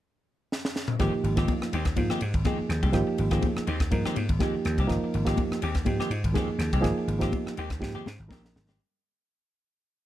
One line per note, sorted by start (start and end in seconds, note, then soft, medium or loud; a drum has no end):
0.52 snare medium
0.65 snare medium
0.76 snare medium
0.88 mid tom medium
0.99 1.11 G#1 medium
0.99 1.13 D#3 medium
0.99 1.35 F3 medium
0.99 1.13 G#3 medium
0.99 1.35 A#3 medium
0.99 1.13 C4 medium
0.99 1.35 D#4 medium
0.99 1.35 G4 loud
0.99 1.12 G4 medium
0.99 kick medium
0.99 cross-stick medium
0.99 ride medium
0.99 muted conga soft
1.13 muted slap bass stroke soft
1.13 muted clean electric guitar stroke soft
1.23 1.44 G#1 medium
1.23 muted clean electric guitar stroke soft
1.23 ride medium
1.36 1.52 D#3 medium
1.36 1.70 F3 medium
1.36 1.51 G#3 medium
1.36 1.70 A#3 medium
1.36 1.52 C4 medium
1.36 1.70 D#4 medium
1.36 1.71 F4 medium
1.36 1.51 G4 medium
1.36 kick medium
1.36 cross-stick medium
1.36 ride medium
1.48 kick loud
1.48 ride medium
1.48 high conga medium
1.61 muted slap bass stroke soft
1.61 muted clean electric guitar stroke soft
1.61 cross-stick medium
1.72 1.94 D#2 loud
1.72 1.86 D#3 medium
1.72 1.86 G#3 medium
1.72 1.85 C4 medium
1.72 1.78 D#4 soft
1.72 1.85 G4 medium
1.72 1.79 A#4 soft
1.72 ride medium
1.72 muted conga soft
1.85 muted clean electric guitar stroke soft
1.85 kick medium
1.85 cross-stick medium
1.85 ride medium
1.96 2.08 G#2 medium
1.96 2.20 F3 medium
1.96 2.20 A#3 medium
1.96 2.19 D#4 medium
1.96 2.20 F4 medium
1.96 muted clean electric guitar stroke soft
1.96 kick medium
1.96 ride medium
1.96 muted conga soft
1.96 high conga medium
2.10 2.21 D#3 medium
2.10 2.21 G#3 medium
2.10 2.21 C4 medium
2.10 2.22 G4 medium
2.10 muted slap bass stroke soft
2.10 cross-stick medium
2.20 2.33 G#2 medium
2.20 2.27 D#4 soft
2.20 2.28 G4 soft
2.20 muted clean electric guitar stroke soft
2.20 ride medium
2.20 muted conga soft
2.34 2.44 G#1 medium
2.34 kick medium
2.34 ride medium
2.45 2.59 D#3 medium
2.45 2.91 F3 medium
2.45 2.58 G#3 medium
2.45 2.92 A#3 medium
2.45 2.58 C4 medium
2.45 2.92 D#4 medium
2.45 2.58 G4 medium
2.45 2.92 G#4 medium
2.45 kick loud
2.45 cross-stick medium
2.45 ride medium
2.45 high conga medium
2.59 muted clean electric guitar stroke soft
2.59 muted slap bass stroke soft
2.69 2.81 D#2 medium
2.69 muted clean electric guitar stroke soft
2.69 cross-stick medium
2.69 ride medium
2.83 2.93 C2 medium
2.83 2.97 G#3 soft
2.83 2.97 C4 soft
2.83 2.97 G4 medium
2.83 kick medium
2.83 ride medium
2.93 3.06 G#1 medium
2.93 3.29 F3 medium
2.93 3.29 A#3 medium
2.93 3.29 D#4 medium
2.93 3.30 G4 loud
2.93 kick medium
2.93 cross-stick medium
2.93 ride medium
2.93 muted conga soft
3.07 muted clean electric guitar stroke soft
3.07 muted slap bass stroke soft
3.18 3.40 G#1 medium
3.18 muted clean electric guitar stroke soft
3.18 ride medium
3.31 3.46 D#3 medium
3.31 3.65 F3 medium
3.31 3.46 G#3 medium
3.31 3.66 A#3 medium
3.31 3.46 C4 medium
3.31 3.66 D#4 medium
3.31 3.45 G4 medium
3.31 3.66 G#4 medium
3.31 kick medium
3.31 cross-stick medium
3.31 ride medium
3.42 kick loud
3.42 ride medium
3.42 high conga medium
3.56 muted slap bass stroke soft
3.56 muted clean electric guitar stroke soft
3.56 cross-stick medium
3.67 3.88 D#2 medium
3.67 3.80 D#3 medium
3.67 3.81 G#3 medium
3.67 3.80 C4 medium
3.67 3.74 D#4 soft
3.67 3.80 G4 medium
3.67 3.74 G4 soft
3.67 ride medium
3.80 muted clean electric guitar stroke soft
3.80 kick medium
3.80 cross-stick medium
3.80 ride medium
3.91 4.03 G#2 medium
3.91 4.14 F3 medium
3.91 4.14 A#3 medium
3.91 4.15 D#4 medium
3.91 4.15 A#4 medium
3.91 muted clean electric guitar stroke soft
3.91 kick medium
3.91 ride medium
3.91 muted conga soft
3.91 low conga medium
4.05 4.16 D#3 medium
4.05 4.17 G#3 medium
4.05 4.17 C4 medium
4.05 4.16 G4 medium
4.05 muted slap bass stroke soft
4.05 cross-stick medium
4.16 4.28 G#2 medium
4.16 4.22 D#4 soft
4.16 4.23 F4 soft
4.16 muted clean electric guitar stroke soft
4.16 ride medium
4.16 muted conga soft
4.16 high conga medium
4.29 4.39 G#1 medium
4.29 kick medium
4.29 ride medium
4.39 4.54 D#3 medium
4.39 4.86 F3 medium
4.39 4.54 G#3 medium
4.39 4.86 A#3 medium
4.39 4.54 C4 medium
4.39 4.87 D#4 medium
4.39 4.87 G4 medium
4.39 4.54 G4 medium
4.39 kick loud
4.39 cross-stick medium
4.39 ride soft
4.39 high conga medium
4.53 muted slap bass stroke soft
4.53 muted clean electric guitar stroke soft
4.65 4.76 D#2 medium
4.65 muted clean electric guitar stroke soft
4.65 cross-stick medium
4.65 ride medium
4.78 4.88 C2 medium
4.78 4.93 G#3 soft
4.78 4.93 C4 medium
4.78 4.93 G4 medium
4.78 kick medium
4.78 ride medium
4.87 5.01 G#1 medium
4.87 5.24 F3 medium
4.87 5.24 A#3 medium
4.87 5.24 D#4 medium
4.87 5.24 A#4 loud
4.87 kick medium
4.87 cross-stick medium
4.87 ride medium
4.87 muted conga soft
5.02 muted slap bass stroke soft
5.02 muted clean electric guitar stroke soft
5.14 5.35 G#1 medium
5.14 muted clean electric guitar stroke soft
5.14 ride medium
5.25 5.41 D#3 soft
5.25 5.60 F3 medium
5.25 5.41 G#3 medium
5.25 5.60 A#3 medium
5.25 5.41 C4 medium
5.25 5.59 D#4 medium
5.25 5.60 G4 medium
5.25 5.41 G4 medium
5.25 kick medium
5.25 cross-stick medium
5.25 ride medium
5.37 kick loud
5.37 ride medium
5.37 high conga medium
5.51 muted slap bass stroke soft
5.51 muted clean electric guitar stroke soft
5.51 cross-stick medium
5.61 5.83 D#2 medium
5.61 5.75 D#3 medium
5.61 5.76 G#3 medium
5.61 5.76 C4 medium
5.61 5.68 D#4 soft
5.61 5.75 G4 medium
5.61 ride medium
5.61 muted conga soft
5.75 muted clean electric guitar stroke soft
5.75 kick medium
5.75 cross-stick medium
5.75 ride medium
5.85 5.98 G#2 medium
5.85 6.09 F3 medium
5.85 6.09 A#3 medium
5.85 6.08 D#4 medium
5.85 6.09 G4 medium
5.85 muted clean electric guitar stroke soft
5.85 kick medium
5.85 ride medium
5.85 muted conga soft
5.85 high conga medium
5.99 6.10 D#3 medium
5.99 6.10 G#3 medium
5.99 6.10 C4 medium
5.99 6.11 G4 medium
5.99 muted slap bass stroke soft
5.99 cross-stick medium
6.10 6.22 G#2 medium
6.10 6.17 D#4 soft
6.10 6.17 F4 soft
6.10 muted clean electric guitar stroke soft
6.10 ride medium
6.10 muted conga soft
6.24 6.34 G#1 medium
6.24 kick medium
6.24 ride medium
6.33 6.48 D#3 medium
6.33 6.80 F3 medium
6.33 6.49 G#3 medium
6.33 6.81 A#3 medium
6.33 6.48 C4 medium
6.33 6.81 D#4 medium
6.33 6.48 G4 medium
6.33 6.81 G#4 medium
6.33 kick medium
6.33 cross-stick medium
6.33 ride medium
6.33 high conga medium
6.48 muted slap bass stroke soft
6.48 muted clean electric guitar stroke soft
6.58 6.70 D#2 medium
6.58 muted clean electric guitar stroke soft
6.58 cross-stick medium
6.58 ride medium
6.73 6.83 C2 medium
6.73 6.87 G#3 soft
6.73 6.87 C4 medium
6.73 6.87 G4 medium
6.73 kick medium
6.73 ride medium
6.81 6.95 G#1 medium
6.81 7.18 F3 medium
6.81 7.18 A#3 medium
6.81 7.18 D#4 medium
6.81 7.19 G#4 loud
6.81 kick medium
6.81 ride medium
6.85 cross-stick medium
6.96 muted slap bass stroke soft
6.96 muted clean electric guitar stroke soft
7.07 7.29 G#1 medium
7.07 muted clean electric guitar stroke soft
7.07 ride medium
7.19 7.36 D#3 medium
7.19 7.54 F3 medium
7.19 7.36 G#3 medium
7.19 7.54 A#3 medium
7.19 7.36 C4 medium
7.19 7.55 D#4 medium
7.19 7.54 G4 medium
7.19 7.36 G4 medium
7.19 kick medium
7.19 cross-stick medium
7.19 ride medium
7.32 kick loud
7.32 ride medium
7.32 high conga medium
7.46 muted slap bass stroke soft
7.46 muted clean electric guitar stroke soft
7.46 cross-stick medium
7.57 7.79 D#2 medium
7.57 7.71 D#3 medium
7.57 7.70 G#3 medium
7.57 7.70 C4 medium
7.57 7.69 G4 medium
7.57 ride medium
7.57 muted conga soft
7.70 muted clean electric guitar stroke soft
7.70 kick medium
7.70 cross-stick medium
7.70 ride medium
7.79 7.93 G#2 medium
7.79 8.04 F3 medium
7.79 8.04 A#3 medium
7.79 8.03 D#4 medium
7.79 8.04 G4 medium
7.79 muted clean electric guitar stroke soft
7.79 kick medium
7.79 snare medium
7.79 muted conga soft
7.79 low conga medium
7.95 8.06 D#3 medium
7.95 8.06 G#3 medium
7.95 8.06 C4 medium
7.95 8.06 G4 medium
7.95 muted slap bass stroke soft
8.04 8.18 G#2 medium
8.04 8.11 D#4 soft
8.04 muted clean electric guitar stroke soft
8.04 snare medium
8.04 muted conga soft
8.04 high conga medium
8.20 8.29 G#1 medium
8.28 8.53 A#1 medium
8.28 8.44 D#3 medium
8.28 8.76 F3 medium
8.28 8.43 G#3 medium
8.28 8.76 A#3 medium
8.28 8.76 D#4 medium
8.28 8.76 A#4 medium
8.28 kick loud
8.28 snare medium
8.28 high conga medium
8.32 8.43 C4 medium
8.32 8.43 G4 medium
8.43 muted clean electric guitar stroke soft
8.43 snare medium
8.43 high conga medium
8.54 8.77 G#1 medium
8.54 muted clean electric guitar stroke soft
8.54 snare medium
8.54 low conga medium
8.67 8.80 G#3 soft
8.67 8.80 C4 medium
8.67 8.80 G4 medium
8.67 snare medium
8.67 low conga medium